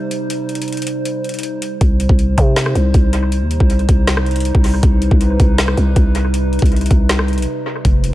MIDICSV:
0, 0, Header, 1, 4, 480
1, 0, Start_track
1, 0, Key_signature, -3, "minor"
1, 0, Tempo, 377358
1, 384, Time_signature, 4, 2, 24, 8
1, 10355, End_track
2, 0, Start_track
2, 0, Title_t, "Ambient pad"
2, 0, Program_c, 0, 92
2, 0, Note_on_c, 0, 48, 83
2, 0, Note_on_c, 0, 55, 76
2, 0, Note_on_c, 0, 63, 77
2, 0, Note_on_c, 0, 72, 91
2, 2253, Note_off_c, 0, 48, 0
2, 2253, Note_off_c, 0, 55, 0
2, 2253, Note_off_c, 0, 72, 0
2, 2254, Note_off_c, 0, 63, 0
2, 2302, Note_on_c, 0, 48, 87
2, 2303, Note_on_c, 0, 55, 76
2, 2303, Note_on_c, 0, 63, 76
2, 2303, Note_on_c, 0, 72, 94
2, 6105, Note_off_c, 0, 72, 0
2, 6142, Note_on_c, 0, 71, 93
2, 9933, Note_off_c, 0, 55, 0
2, 9933, Note_off_c, 0, 63, 0
2, 9944, Note_off_c, 0, 71, 0
2, 9983, Note_on_c, 0, 56, 80
2, 9983, Note_on_c, 0, 72, 96
2, 9984, Note_on_c, 0, 65, 80
2, 10355, Note_off_c, 0, 48, 0
2, 10355, Note_off_c, 0, 56, 0
2, 10355, Note_off_c, 0, 65, 0
2, 10355, Note_off_c, 0, 72, 0
2, 10355, End_track
3, 0, Start_track
3, 0, Title_t, "808-style bass"
3, 0, Program_c, 1, 38
3, 2303, Note_on_c, 1, 36, 110
3, 2649, Note_off_c, 1, 36, 0
3, 2662, Note_on_c, 1, 36, 105
3, 3009, Note_off_c, 1, 36, 0
3, 3024, Note_on_c, 1, 48, 108
3, 3485, Note_off_c, 1, 48, 0
3, 3503, Note_on_c, 1, 36, 105
3, 3734, Note_off_c, 1, 36, 0
3, 3744, Note_on_c, 1, 36, 105
3, 4343, Note_on_c, 1, 39, 101
3, 4362, Note_off_c, 1, 36, 0
3, 4571, Note_off_c, 1, 39, 0
3, 4584, Note_on_c, 1, 36, 103
3, 4929, Note_off_c, 1, 36, 0
3, 4945, Note_on_c, 1, 36, 106
3, 5751, Note_off_c, 1, 36, 0
3, 5784, Note_on_c, 1, 36, 104
3, 6130, Note_off_c, 1, 36, 0
3, 6144, Note_on_c, 1, 36, 109
3, 6489, Note_off_c, 1, 36, 0
3, 6503, Note_on_c, 1, 36, 108
3, 6849, Note_off_c, 1, 36, 0
3, 6865, Note_on_c, 1, 36, 103
3, 7325, Note_off_c, 1, 36, 0
3, 7345, Note_on_c, 1, 36, 103
3, 7575, Note_off_c, 1, 36, 0
3, 7584, Note_on_c, 1, 36, 108
3, 8390, Note_off_c, 1, 36, 0
3, 8424, Note_on_c, 1, 36, 102
3, 8770, Note_off_c, 1, 36, 0
3, 8785, Note_on_c, 1, 36, 104
3, 9386, Note_on_c, 1, 35, 97
3, 9405, Note_off_c, 1, 36, 0
3, 9499, Note_off_c, 1, 35, 0
3, 9983, Note_on_c, 1, 29, 112
3, 10329, Note_off_c, 1, 29, 0
3, 10355, End_track
4, 0, Start_track
4, 0, Title_t, "Drums"
4, 141, Note_on_c, 9, 42, 78
4, 268, Note_off_c, 9, 42, 0
4, 382, Note_on_c, 9, 42, 88
4, 510, Note_off_c, 9, 42, 0
4, 623, Note_on_c, 9, 42, 46
4, 703, Note_off_c, 9, 42, 0
4, 703, Note_on_c, 9, 42, 61
4, 783, Note_off_c, 9, 42, 0
4, 783, Note_on_c, 9, 42, 76
4, 862, Note_off_c, 9, 42, 0
4, 862, Note_on_c, 9, 42, 43
4, 922, Note_off_c, 9, 42, 0
4, 922, Note_on_c, 9, 42, 53
4, 982, Note_off_c, 9, 42, 0
4, 982, Note_on_c, 9, 42, 59
4, 1043, Note_off_c, 9, 42, 0
4, 1043, Note_on_c, 9, 42, 71
4, 1103, Note_off_c, 9, 42, 0
4, 1103, Note_on_c, 9, 42, 83
4, 1230, Note_off_c, 9, 42, 0
4, 1341, Note_on_c, 9, 42, 83
4, 1468, Note_off_c, 9, 42, 0
4, 1583, Note_on_c, 9, 42, 41
4, 1643, Note_off_c, 9, 42, 0
4, 1643, Note_on_c, 9, 42, 50
4, 1703, Note_off_c, 9, 42, 0
4, 1703, Note_on_c, 9, 42, 57
4, 1764, Note_off_c, 9, 42, 0
4, 1764, Note_on_c, 9, 42, 67
4, 1822, Note_off_c, 9, 42, 0
4, 1822, Note_on_c, 9, 42, 77
4, 1949, Note_off_c, 9, 42, 0
4, 2061, Note_on_c, 9, 42, 80
4, 2188, Note_off_c, 9, 42, 0
4, 2303, Note_on_c, 9, 36, 119
4, 2303, Note_on_c, 9, 42, 89
4, 2430, Note_off_c, 9, 36, 0
4, 2430, Note_off_c, 9, 42, 0
4, 2543, Note_on_c, 9, 42, 81
4, 2663, Note_on_c, 9, 36, 88
4, 2670, Note_off_c, 9, 42, 0
4, 2783, Note_on_c, 9, 42, 68
4, 2790, Note_off_c, 9, 36, 0
4, 2910, Note_off_c, 9, 42, 0
4, 3024, Note_on_c, 9, 36, 102
4, 3024, Note_on_c, 9, 42, 91
4, 3151, Note_off_c, 9, 36, 0
4, 3151, Note_off_c, 9, 42, 0
4, 3260, Note_on_c, 9, 42, 86
4, 3262, Note_on_c, 9, 38, 122
4, 3384, Note_on_c, 9, 37, 94
4, 3387, Note_off_c, 9, 42, 0
4, 3389, Note_off_c, 9, 38, 0
4, 3504, Note_on_c, 9, 42, 67
4, 3511, Note_off_c, 9, 37, 0
4, 3631, Note_off_c, 9, 42, 0
4, 3742, Note_on_c, 9, 42, 74
4, 3743, Note_on_c, 9, 36, 96
4, 3869, Note_off_c, 9, 42, 0
4, 3870, Note_off_c, 9, 36, 0
4, 3981, Note_on_c, 9, 42, 82
4, 4109, Note_off_c, 9, 42, 0
4, 4222, Note_on_c, 9, 42, 91
4, 4350, Note_off_c, 9, 42, 0
4, 4462, Note_on_c, 9, 42, 76
4, 4583, Note_on_c, 9, 36, 93
4, 4589, Note_off_c, 9, 42, 0
4, 4703, Note_on_c, 9, 42, 73
4, 4710, Note_off_c, 9, 36, 0
4, 4824, Note_off_c, 9, 42, 0
4, 4824, Note_on_c, 9, 42, 41
4, 4944, Note_off_c, 9, 42, 0
4, 4944, Note_on_c, 9, 42, 89
4, 4945, Note_on_c, 9, 36, 99
4, 5071, Note_off_c, 9, 42, 0
4, 5072, Note_off_c, 9, 36, 0
4, 5182, Note_on_c, 9, 42, 85
4, 5183, Note_on_c, 9, 38, 125
4, 5305, Note_on_c, 9, 37, 94
4, 5309, Note_off_c, 9, 42, 0
4, 5310, Note_off_c, 9, 38, 0
4, 5424, Note_on_c, 9, 42, 41
4, 5432, Note_off_c, 9, 37, 0
4, 5483, Note_off_c, 9, 42, 0
4, 5483, Note_on_c, 9, 42, 52
4, 5543, Note_off_c, 9, 42, 0
4, 5543, Note_on_c, 9, 42, 61
4, 5603, Note_off_c, 9, 42, 0
4, 5603, Note_on_c, 9, 42, 69
4, 5662, Note_off_c, 9, 42, 0
4, 5662, Note_on_c, 9, 42, 78
4, 5784, Note_on_c, 9, 36, 102
4, 5790, Note_off_c, 9, 42, 0
4, 5902, Note_on_c, 9, 46, 82
4, 5911, Note_off_c, 9, 36, 0
4, 6029, Note_off_c, 9, 46, 0
4, 6143, Note_on_c, 9, 42, 90
4, 6144, Note_on_c, 9, 36, 127
4, 6270, Note_off_c, 9, 42, 0
4, 6271, Note_off_c, 9, 36, 0
4, 6383, Note_on_c, 9, 42, 82
4, 6503, Note_on_c, 9, 36, 89
4, 6510, Note_off_c, 9, 42, 0
4, 6624, Note_on_c, 9, 42, 71
4, 6631, Note_off_c, 9, 36, 0
4, 6751, Note_off_c, 9, 42, 0
4, 6864, Note_on_c, 9, 42, 85
4, 6865, Note_on_c, 9, 36, 97
4, 6991, Note_off_c, 9, 42, 0
4, 6992, Note_off_c, 9, 36, 0
4, 7101, Note_on_c, 9, 42, 87
4, 7103, Note_on_c, 9, 38, 127
4, 7224, Note_on_c, 9, 37, 91
4, 7229, Note_off_c, 9, 42, 0
4, 7230, Note_off_c, 9, 38, 0
4, 7344, Note_on_c, 9, 42, 68
4, 7352, Note_off_c, 9, 37, 0
4, 7472, Note_off_c, 9, 42, 0
4, 7582, Note_on_c, 9, 42, 72
4, 7584, Note_on_c, 9, 36, 91
4, 7709, Note_off_c, 9, 42, 0
4, 7711, Note_off_c, 9, 36, 0
4, 7821, Note_on_c, 9, 42, 83
4, 7948, Note_off_c, 9, 42, 0
4, 8063, Note_on_c, 9, 42, 92
4, 8190, Note_off_c, 9, 42, 0
4, 8303, Note_on_c, 9, 42, 46
4, 8383, Note_off_c, 9, 42, 0
4, 8383, Note_on_c, 9, 42, 61
4, 8423, Note_on_c, 9, 36, 93
4, 8465, Note_off_c, 9, 42, 0
4, 8465, Note_on_c, 9, 42, 77
4, 8544, Note_off_c, 9, 42, 0
4, 8544, Note_on_c, 9, 42, 42
4, 8551, Note_off_c, 9, 36, 0
4, 8604, Note_off_c, 9, 42, 0
4, 8604, Note_on_c, 9, 42, 53
4, 8664, Note_off_c, 9, 42, 0
4, 8664, Note_on_c, 9, 42, 62
4, 8724, Note_off_c, 9, 42, 0
4, 8724, Note_on_c, 9, 42, 72
4, 8785, Note_off_c, 9, 42, 0
4, 8785, Note_on_c, 9, 36, 102
4, 8785, Note_on_c, 9, 42, 86
4, 8912, Note_off_c, 9, 42, 0
4, 8913, Note_off_c, 9, 36, 0
4, 9023, Note_on_c, 9, 42, 90
4, 9024, Note_on_c, 9, 38, 122
4, 9145, Note_on_c, 9, 37, 92
4, 9150, Note_off_c, 9, 42, 0
4, 9151, Note_off_c, 9, 38, 0
4, 9264, Note_on_c, 9, 42, 43
4, 9272, Note_off_c, 9, 37, 0
4, 9324, Note_off_c, 9, 42, 0
4, 9324, Note_on_c, 9, 42, 51
4, 9384, Note_off_c, 9, 42, 0
4, 9384, Note_on_c, 9, 42, 60
4, 9443, Note_off_c, 9, 42, 0
4, 9443, Note_on_c, 9, 42, 68
4, 9571, Note_off_c, 9, 42, 0
4, 9984, Note_on_c, 9, 36, 125
4, 9984, Note_on_c, 9, 42, 89
4, 10111, Note_off_c, 9, 36, 0
4, 10111, Note_off_c, 9, 42, 0
4, 10223, Note_on_c, 9, 42, 84
4, 10351, Note_off_c, 9, 42, 0
4, 10355, End_track
0, 0, End_of_file